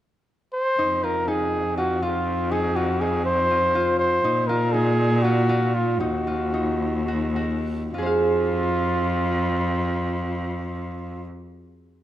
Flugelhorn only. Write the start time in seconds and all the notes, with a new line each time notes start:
0.53 C5
1.04 A#4
1.28 G#4
1.78 F#4
2.03 F4
2.51 G#4
2.76 F#4
3.00 G#4
3.25 C5
3.99 C5
4.47 A#4
4.72 G#4
5.22 F#4
5.74 F4
6.00 F#4
7.94 F4